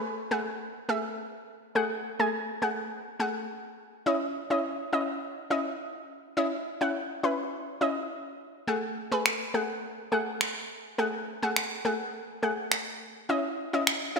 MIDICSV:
0, 0, Header, 1, 3, 480
1, 0, Start_track
1, 0, Tempo, 576923
1, 1461, Time_signature, 4, 2, 24, 8
1, 11810, End_track
2, 0, Start_track
2, 0, Title_t, "Synth pluck"
2, 0, Program_c, 0, 84
2, 0, Note_on_c, 0, 57, 80
2, 0, Note_on_c, 0, 68, 76
2, 0, Note_on_c, 0, 71, 92
2, 120, Note_off_c, 0, 57, 0
2, 122, Note_off_c, 0, 68, 0
2, 122, Note_off_c, 0, 71, 0
2, 258, Note_on_c, 0, 57, 83
2, 261, Note_on_c, 0, 68, 75
2, 262, Note_on_c, 0, 78, 87
2, 549, Note_off_c, 0, 57, 0
2, 550, Note_off_c, 0, 68, 0
2, 551, Note_off_c, 0, 78, 0
2, 738, Note_on_c, 0, 57, 80
2, 740, Note_on_c, 0, 68, 74
2, 742, Note_on_c, 0, 76, 89
2, 1173, Note_off_c, 0, 57, 0
2, 1174, Note_off_c, 0, 68, 0
2, 1175, Note_off_c, 0, 76, 0
2, 1458, Note_on_c, 0, 57, 82
2, 1460, Note_on_c, 0, 68, 78
2, 1462, Note_on_c, 0, 78, 92
2, 1676, Note_off_c, 0, 57, 0
2, 1677, Note_off_c, 0, 68, 0
2, 1678, Note_off_c, 0, 78, 0
2, 1826, Note_on_c, 0, 57, 82
2, 1828, Note_on_c, 0, 68, 76
2, 1829, Note_on_c, 0, 80, 91
2, 2040, Note_off_c, 0, 57, 0
2, 2041, Note_off_c, 0, 68, 0
2, 2042, Note_off_c, 0, 80, 0
2, 2179, Note_on_c, 0, 57, 80
2, 2181, Note_on_c, 0, 68, 71
2, 2183, Note_on_c, 0, 78, 87
2, 2469, Note_off_c, 0, 57, 0
2, 2470, Note_off_c, 0, 68, 0
2, 2472, Note_off_c, 0, 78, 0
2, 2659, Note_on_c, 0, 57, 79
2, 2661, Note_on_c, 0, 68, 76
2, 2663, Note_on_c, 0, 78, 91
2, 3093, Note_off_c, 0, 57, 0
2, 3094, Note_off_c, 0, 68, 0
2, 3095, Note_off_c, 0, 78, 0
2, 3379, Note_on_c, 0, 61, 85
2, 3381, Note_on_c, 0, 64, 78
2, 3383, Note_on_c, 0, 75, 92
2, 3596, Note_off_c, 0, 61, 0
2, 3597, Note_off_c, 0, 64, 0
2, 3599, Note_off_c, 0, 75, 0
2, 3747, Note_on_c, 0, 61, 80
2, 3748, Note_on_c, 0, 64, 76
2, 3751, Note_on_c, 0, 75, 89
2, 3961, Note_off_c, 0, 61, 0
2, 3962, Note_off_c, 0, 64, 0
2, 3963, Note_off_c, 0, 75, 0
2, 4099, Note_on_c, 0, 61, 82
2, 4101, Note_on_c, 0, 64, 73
2, 4103, Note_on_c, 0, 75, 91
2, 4389, Note_off_c, 0, 61, 0
2, 4391, Note_off_c, 0, 64, 0
2, 4392, Note_off_c, 0, 75, 0
2, 4580, Note_on_c, 0, 61, 80
2, 4582, Note_on_c, 0, 64, 76
2, 4584, Note_on_c, 0, 75, 91
2, 5013, Note_off_c, 0, 61, 0
2, 5014, Note_off_c, 0, 64, 0
2, 5015, Note_off_c, 0, 75, 0
2, 5299, Note_on_c, 0, 61, 86
2, 5300, Note_on_c, 0, 64, 78
2, 5302, Note_on_c, 0, 75, 93
2, 5516, Note_off_c, 0, 61, 0
2, 5517, Note_off_c, 0, 64, 0
2, 5518, Note_off_c, 0, 75, 0
2, 5665, Note_on_c, 0, 61, 81
2, 5667, Note_on_c, 0, 64, 74
2, 5670, Note_on_c, 0, 78, 90
2, 5880, Note_off_c, 0, 61, 0
2, 5881, Note_off_c, 0, 64, 0
2, 5882, Note_off_c, 0, 78, 0
2, 6019, Note_on_c, 0, 61, 84
2, 6021, Note_on_c, 0, 64, 76
2, 6023, Note_on_c, 0, 71, 89
2, 6310, Note_off_c, 0, 61, 0
2, 6310, Note_off_c, 0, 64, 0
2, 6312, Note_off_c, 0, 71, 0
2, 6498, Note_on_c, 0, 61, 82
2, 6500, Note_on_c, 0, 64, 75
2, 6503, Note_on_c, 0, 75, 92
2, 6933, Note_off_c, 0, 61, 0
2, 6934, Note_off_c, 0, 64, 0
2, 6935, Note_off_c, 0, 75, 0
2, 7217, Note_on_c, 0, 57, 86
2, 7220, Note_on_c, 0, 68, 77
2, 7222, Note_on_c, 0, 78, 89
2, 7436, Note_off_c, 0, 57, 0
2, 7437, Note_off_c, 0, 68, 0
2, 7438, Note_off_c, 0, 78, 0
2, 7584, Note_on_c, 0, 57, 82
2, 7587, Note_on_c, 0, 68, 78
2, 7589, Note_on_c, 0, 71, 95
2, 7800, Note_off_c, 0, 57, 0
2, 7801, Note_off_c, 0, 68, 0
2, 7802, Note_off_c, 0, 71, 0
2, 7938, Note_on_c, 0, 57, 77
2, 7940, Note_on_c, 0, 68, 75
2, 7942, Note_on_c, 0, 78, 87
2, 8229, Note_off_c, 0, 57, 0
2, 8230, Note_off_c, 0, 68, 0
2, 8231, Note_off_c, 0, 78, 0
2, 8418, Note_on_c, 0, 57, 84
2, 8420, Note_on_c, 0, 68, 71
2, 8422, Note_on_c, 0, 78, 93
2, 8852, Note_off_c, 0, 57, 0
2, 8853, Note_off_c, 0, 68, 0
2, 8855, Note_off_c, 0, 78, 0
2, 9138, Note_on_c, 0, 57, 83
2, 9141, Note_on_c, 0, 68, 80
2, 9143, Note_on_c, 0, 78, 96
2, 9356, Note_off_c, 0, 57, 0
2, 9357, Note_off_c, 0, 68, 0
2, 9358, Note_off_c, 0, 78, 0
2, 9506, Note_on_c, 0, 57, 87
2, 9508, Note_on_c, 0, 68, 76
2, 9510, Note_on_c, 0, 78, 93
2, 9721, Note_off_c, 0, 57, 0
2, 9722, Note_off_c, 0, 68, 0
2, 9723, Note_off_c, 0, 78, 0
2, 9858, Note_on_c, 0, 57, 81
2, 9860, Note_on_c, 0, 68, 76
2, 9863, Note_on_c, 0, 78, 91
2, 10149, Note_off_c, 0, 57, 0
2, 10150, Note_off_c, 0, 68, 0
2, 10151, Note_off_c, 0, 78, 0
2, 10338, Note_on_c, 0, 57, 78
2, 10340, Note_on_c, 0, 68, 77
2, 10342, Note_on_c, 0, 78, 91
2, 10772, Note_off_c, 0, 57, 0
2, 10773, Note_off_c, 0, 68, 0
2, 10775, Note_off_c, 0, 78, 0
2, 11058, Note_on_c, 0, 61, 87
2, 11060, Note_on_c, 0, 64, 75
2, 11062, Note_on_c, 0, 75, 92
2, 11276, Note_off_c, 0, 61, 0
2, 11277, Note_off_c, 0, 64, 0
2, 11278, Note_off_c, 0, 75, 0
2, 11426, Note_on_c, 0, 61, 85
2, 11428, Note_on_c, 0, 64, 73
2, 11430, Note_on_c, 0, 75, 91
2, 11641, Note_off_c, 0, 61, 0
2, 11642, Note_off_c, 0, 64, 0
2, 11643, Note_off_c, 0, 75, 0
2, 11780, Note_on_c, 0, 61, 83
2, 11781, Note_on_c, 0, 64, 78
2, 11784, Note_on_c, 0, 75, 89
2, 11810, Note_off_c, 0, 61, 0
2, 11810, Note_off_c, 0, 64, 0
2, 11810, Note_off_c, 0, 75, 0
2, 11810, End_track
3, 0, Start_track
3, 0, Title_t, "Drums"
3, 7702, Note_on_c, 9, 26, 112
3, 7785, Note_off_c, 9, 26, 0
3, 8660, Note_on_c, 9, 26, 104
3, 8743, Note_off_c, 9, 26, 0
3, 9622, Note_on_c, 9, 26, 116
3, 9705, Note_off_c, 9, 26, 0
3, 10579, Note_on_c, 9, 26, 106
3, 10662, Note_off_c, 9, 26, 0
3, 11541, Note_on_c, 9, 26, 107
3, 11624, Note_off_c, 9, 26, 0
3, 11810, End_track
0, 0, End_of_file